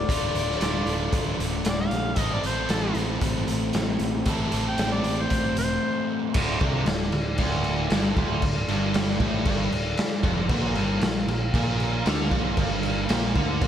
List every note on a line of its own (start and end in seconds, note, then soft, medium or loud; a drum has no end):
0.00 0.11 A3 medium
0.00 2.14 D4 medium
0.00 2.14 F4 medium
0.00 2.14 A4 medium
0.00 1.36 D5 loud
0.00 2.14 D5 medium
0.09 0.30 D1 medium
0.09 2.16 D2 medium
0.09 2.16 A2 medium
0.09 2.17 D3 medium
0.09 2.18 A3 loud
0.09 2.18 F4 medium
0.09 kick loud
0.09 closed hi-hat medium
0.34 0.56 D1 medium
0.34 closed hi-hat medium
0.50 snare soft
0.61 0.82 D1 medium
0.61 snare loud
0.61 closed hi-hat medium
0.86 1.08 D1 medium
0.86 closed hi-hat medium
1.13 1.34 D1 medium
1.13 kick loud
1.13 closed hi-hat medium
1.39 1.60 D1 medium
1.39 closed hi-hat medium
1.65 1.87 D1 medium
1.65 snare loud
1.65 closed hi-hat medium
1.70 1.80 D5 medium
1.80 2.30 F5 medium
1.91 2.13 A#1 medium
1.91 closed hi-hat medium
2.15 2.38 A1 loud
2.15 4.24 A2 medium
2.15 4.25 E3 medium
2.15 4.27 A3 medium
2.15 6.30 C4 medium
2.15 4.25 C4 medium
2.15 6.30 E4 medium
2.15 6.30 A4 medium
2.15 6.29 C5 medium
2.15 kick loud
2.15 closed hi-hat medium
2.19 4.26 E4 medium
2.19 4.29 A4 medium
2.33 2.44 D5 medium
2.44 2.65 A1 medium
2.44 2.69 C5 medium
2.44 closed hi-hat medium
2.69 2.91 A1 medium
2.69 2.95 A4 medium
2.69 snare loud
2.69 closed hi-hat medium
2.95 3.17 A1 medium
2.95 closed hi-hat medium
3.21 3.43 A1 loud
3.21 kick loud
3.21 closed hi-hat medium
3.48 3.70 A1 medium
3.48 closed hi-hat medium
3.73 3.95 A1 medium
3.73 snare loud
3.73 closed hi-hat medium
3.99 4.22 A1 medium
3.99 closed hi-hat medium
4.26 4.47 A1 medium
4.26 6.33 A2 medium
4.26 6.33 E3 medium
4.26 6.34 A3 medium
4.26 6.34 C4 medium
4.26 6.34 E4 medium
4.26 6.35 A4 medium
4.26 kick loud
4.26 closed hi-hat medium
4.52 4.74 A1 medium
4.52 closed hi-hat medium
4.69 4.94 G5 medium
4.78 5.00 A1 medium
4.78 snare loud
4.78 closed hi-hat medium
4.93 5.23 D5 medium
5.04 5.25 A1 medium
5.04 closed hi-hat medium
5.21 5.57 C5 medium
5.30 5.52 A1 medium
5.30 kick loud
5.30 closed hi-hat medium
5.56 5.77 E1 medium
5.56 6.08 C5 medium
5.56 closed hi-hat medium
6.34 6.59 D1 medium
6.34 6.61 D2 loud
6.34 10.47 D4 medium
6.34 10.47 F4 medium
6.34 10.47 A4 medium
6.34 10.47 D5 medium
6.34 kick loud
6.34 crash loud
6.34 crash medium
6.61 6.85 C2 medium
6.61 6.86 C3 loud
6.61 kick loud
6.61 crash medium
6.86 7.11 D1 medium
6.86 7.07 D2 medium
6.86 snare loud
6.86 crash medium
7.12 7.37 D1 medium
7.12 7.33 D2 medium
7.12 crash medium
7.38 7.87 D1 loud
7.38 7.90 D2 loud
7.38 kick loud
7.38 crash medium
7.64 crash medium
7.90 8.15 G1 medium
7.90 8.16 G2 loud
7.90 snare loud
7.90 crash medium
8.16 8.41 D1 loud
8.16 8.42 D2 loud
8.16 kick loud
8.16 crash medium
8.42 8.67 D1 medium
8.42 8.64 D2 medium
8.42 kick medium
8.42 crash medium
8.68 9.17 G1 medium
8.68 9.19 G2 loud
8.68 crash medium
8.94 snare loud
8.94 crash medium
9.20 9.44 A1 loud
9.20 9.45 A2 loud
9.20 kick loud
9.20 crash medium
9.45 9.70 G1 loud
9.45 9.71 G2 medium
9.45 kick loud
9.45 crash medium
9.71 9.96 D1 medium
9.71 9.93 D2 medium
9.71 crash medium
9.97 snare loud
9.97 crash medium
10.23 10.48 F1 loud
10.23 10.49 F2 loud
10.23 kick loud
10.23 crash medium
10.48 10.74 A#1 loud
10.48 10.75 A#2 loud
10.48 10.66 B3 medium
10.48 10.67 F#4 medium
10.48 10.66 B4 medium
10.48 10.66 F#5 medium
10.48 kick loud
10.48 crash medium
10.65 13.68 A#3 medium
10.65 13.68 F4 medium
10.65 13.68 A#4 medium
10.65 13.68 F5 medium
10.75 11.00 G1 loud
10.75 11.01 G2 loud
10.75 crash medium
11.01 11.25 A#1 medium
11.01 11.23 A#2 medium
11.01 snare loud
11.01 crash medium
11.27 11.52 A#1 medium
11.27 11.49 A#2 medium
11.27 crash medium
11.54 12.02 A#1 loud
11.54 12.05 A#2 loud
11.54 kick loud
11.54 crash medium
11.80 crash medium
12.06 12.30 D2 medium
12.06 12.31 D3 loud
12.06 snare loud
12.06 crash medium
12.31 12.56 A#1 loud
12.31 12.57 A#2 loud
12.31 kick loud
12.31 crash medium
12.57 13.06 G1 loud
12.57 13.09 G2 loud
12.57 kick loud
12.57 crash medium
12.83 crash medium
13.09 13.34 A#1 medium
13.09 13.34 A#2 loud
13.09 snare loud
13.09 crash medium
13.35 13.60 D2 medium
13.35 13.61 D3 loud
13.35 kick loud
13.35 crash medium
13.61 13.68 A#1 medium
13.61 13.68 A#2 medium
13.61 kick loud
13.61 crash medium